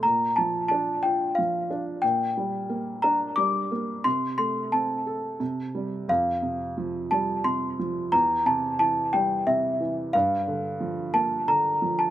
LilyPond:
<<
  \new Staff \with { instrumentName = "Celesta" } { \time 3/4 \key g \dorian \tempo 4 = 89 bes''8 a''8 a''8 g''8 f''8. r16 | g''4. bes''8 d'''4 | c'''8 c'''8 a''4. r8 | f''4 r8 a''8 c'''4 |
bes''8 a''8 a''8 g''8 e''8. r16 | f''4. a''8 bes''8. a''16 | }
  \new Staff \with { instrumentName = "Felt piano" } { \clef bass \time 3/4 \key g \dorian bes,8 f8 d'8 f'8 f8 d'8 | bes,8 g8 bes8 d'8 g8 bes8 | c8 a8 c'8 a'8 c8 g8 | f,8 c8 f8 g8 c8 f8 |
e,8 c8 e8 g8 c8 e8 | g,8 d8 f8 bes8 d8 f8 | }
>>